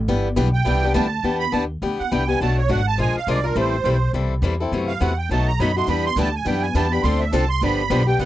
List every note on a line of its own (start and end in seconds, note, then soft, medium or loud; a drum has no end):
0.08 0.36 G1 medium
0.08 0.27 E3 medium
0.08 0.27 G3 medium
0.08 0.27 B3 medium
0.08 0.27 D4 medium
0.08 0.28 E4 medium
0.08 0.28 G4 medium
0.08 0.28 B4 medium
0.36 0.65 B1 loud
0.36 0.47 E3 medium
0.36 0.48 G3 loud
0.36 0.47 B3 medium
0.36 0.48 D4 medium
0.36 0.48 E4 loud
0.36 0.48 G4 medium
0.36 0.48 B4 medium
0.53 0.92 G5 loud
0.65 0.94 C2 medium
0.65 0.82 E3 medium
0.65 0.86 G3 medium
0.65 0.82 B3 medium
0.65 0.82 D4 medium
0.65 0.86 E4 medium
0.65 0.82 G4 medium
0.65 0.86 B4 medium
0.83 0.93 B3 medium
0.83 0.93 D4 medium
0.83 0.93 G4 medium
0.94 1.23 D2 loud
0.94 1.05 E3 medium
0.94 1.06 G3 medium
0.94 1.06 B3 loud
0.94 1.05 D4 loud
0.94 1.06 E4 medium
0.94 1.05 G4 loud
0.94 1.07 B4 medium
0.94 1.37 A5 medium
1.23 1.52 E2 medium
1.23 1.43 E3 medium
1.23 1.43 B3 medium
1.23 1.44 D4 medium
1.23 1.43 G4 medium
1.39 1.52 B5 loud
1.52 1.81 D#2 medium
1.52 1.64 E3 medium
1.52 1.63 B3 medium
1.52 1.64 D4 medium
1.52 1.64 G4 medium
1.52 1.63 A5 medium
1.82 1.98 D2 medium
1.82 2.01 E3 medium
1.82 2.01 B3 medium
1.82 2.01 D4 medium
1.82 2.02 G4 medium
1.99 2.11 F#5 medium
1.99 muted upright bass stroke soft
2.11 2.40 C2 medium
2.11 2.22 E3 medium
2.11 2.22 B3 medium
2.11 2.22 D4 loud
2.11 2.22 G4 medium
2.11 2.28 G5 medium
2.27 2.41 B3 medium
2.27 2.40 D4 soft
2.27 2.40 G4 medium
2.27 2.40 G#5 medium
2.40 2.69 B1 medium
2.40 2.60 B2 medium
2.40 2.60 F#3 medium
2.40 2.60 A3 medium
2.40 2.60 D4 medium
2.40 2.60 F#4 medium
2.40 2.57 A5 medium
2.58 2.69 C#5 medium
2.69 2.98 G#1 loud
2.69 2.79 B2 medium
2.69 2.80 F#3 medium
2.69 2.80 A3 medium
2.69 2.80 D4 medium
2.69 2.80 F#4 medium
2.69 2.86 F#5 medium
2.87 2.99 A5 loud
2.98 3.14 A#1 medium
2.98 3.17 F3 medium
2.98 3.18 G#3 medium
2.98 3.18 D4 medium
2.98 3.18 F4 medium
2.98 3.18 A#4 medium
2.98 3.16 G#5 medium
3.15 3.28 F5 medium
3.15 muted upright bass stroke soft
3.27 3.55 C2 medium
3.27 3.38 F3 medium
3.27 3.38 G#3 loud
3.27 3.38 D4 medium
3.27 3.38 F4 medium
3.27 3.38 A#4 medium
3.27 3.45 D5 medium
3.44 3.56 D4 soft
3.44 3.56 F4 medium
3.44 3.56 A#4 medium
3.55 3.83 A1 medium
3.55 3.75 E3 medium
3.55 3.75 G3 medium
3.55 3.75 C4 medium
3.55 3.75 E4 medium
3.55 3.75 A4 medium
3.55 4.12 C5 medium
3.84 4.12 B1 medium
3.84 3.96 E3 medium
3.84 3.96 G3 medium
3.84 3.96 C4 medium
3.84 3.96 E4 medium
3.84 3.96 A4 medium
4.13 4.41 C2 medium
4.13 4.33 E3 medium
4.13 4.33 G3 medium
4.13 4.33 C4 medium
4.13 4.33 E4 medium
4.13 4.34 A4 medium
4.42 4.71 E2 loud
4.42 4.53 E3 medium
4.42 4.54 G3 medium
4.42 4.54 C4 medium
4.42 4.54 E4 medium
4.42 4.54 A4 loud
4.60 4.73 C4 soft
4.60 4.72 E4 medium
4.60 4.72 A4 medium
4.72 5.00 F#2 medium
4.72 4.91 C3 medium
4.72 4.91 E3 medium
4.72 4.92 A3 medium
4.72 4.92 E4 medium
4.72 4.92 F#4 medium
4.87 5.00 F5 loud
5.00 5.29 E2 medium
5.00 5.11 C3 medium
5.00 5.11 E3 medium
5.00 5.12 A3 medium
5.00 5.12 E4 medium
5.00 5.12 F#4 medium
5.00 5.17 F#5 medium
5.18 5.30 G5 medium
5.29 5.58 B1 medium
5.29 5.50 B2 medium
5.29 5.49 F#3 medium
5.29 5.50 A3 medium
5.29 5.50 D#4 medium
5.29 5.50 F#4 medium
5.29 5.47 A5 medium
5.47 5.59 A#5 medium
5.59 5.87 F#2 loud
5.59 5.70 B2 medium
5.59 5.70 F#3 medium
5.59 5.71 A3 medium
5.59 5.70 D#4 medium
5.59 5.71 F#4 medium
5.59 5.76 B5 medium
5.77 5.89 A3 medium
5.77 5.88 D#4 medium
5.77 5.88 F#4 medium
5.77 5.89 C6 loud
5.87 6.15 E2 medium
5.87 6.07 E3 medium
5.87 6.06 G3 medium
5.87 6.07 B3 medium
5.87 6.07 D4 medium
5.87 6.07 E4 medium
5.87 6.08 G4 medium
5.87 6.07 B4 medium
5.87 6.05 B5 medium
6.06 6.18 C6 loud
6.16 6.45 D2 medium
6.16 6.28 E3 medium
6.16 6.27 G3 medium
6.16 6.28 B3 medium
6.16 6.28 D4 medium
6.16 6.28 E4 loud
6.16 6.28 G4 medium
6.16 6.28 B4 loud
6.16 6.35 A5 medium
6.36 6.47 G#5 medium
6.45 6.74 F#2 medium
6.45 6.65 E3 medium
6.45 6.64 G3 medium
6.45 6.65 B3 medium
6.45 6.65 D4 medium
6.45 6.65 E4 medium
6.45 6.66 G4 medium
6.45 6.65 B4 medium
6.45 6.62 G5 medium
6.62 6.75 G#5 medium
6.75 7.03 E2 loud
6.75 6.86 E3 medium
6.75 6.86 G3 medium
6.75 6.86 B3 medium
6.75 6.86 D4 medium
6.75 6.86 E4 medium
6.75 6.86 G4 loud
6.75 6.86 B4 medium
6.75 6.92 A5 medium
6.92 7.04 B3 soft
6.92 7.04 D4 medium
6.92 7.04 G4 medium
6.92 7.04 B5 loud
7.03 7.32 D2 medium
7.03 7.23 D3 medium
7.03 7.23 F3 medium
7.03 7.23 C4 medium
7.03 7.23 D4 medium
7.03 7.23 A4 medium
7.03 7.20 C6 medium
7.19 7.32 E5 medium
7.32 7.61 C2 medium
7.32 7.43 D3 medium
7.32 7.43 F3 medium
7.32 7.43 C4 medium
7.32 7.43 D4 medium
7.32 7.44 A4 medium
7.32 7.49 A5 medium
7.49 7.62 C6 loud
7.61 7.89 G1 medium
7.61 7.81 D3 medium
7.61 7.81 F3 medium
7.61 7.81 B3 medium
7.61 7.81 D4 medium
7.61 7.82 G4 medium
7.61 8.06 B5 loud
7.90 8.18 B1 loud
7.90 8.01 D3 medium
7.90 8.01 F3 medium
7.90 8.01 B3 loud
7.90 8.01 D4 medium
7.90 8.01 G4 loud
8.06 8.19 B3 soft
8.06 8.19 D4 medium
8.06 8.19 G4 medium
8.06 8.20 G5 loud
8.19 8.25 C2 medium
8.19 8.25 C3 medium
8.19 8.25 G3 medium
8.19 8.25 B3 medium
8.19 8.25 E4 medium
8.19 8.25 G4 medium
8.19 8.25 F#5 medium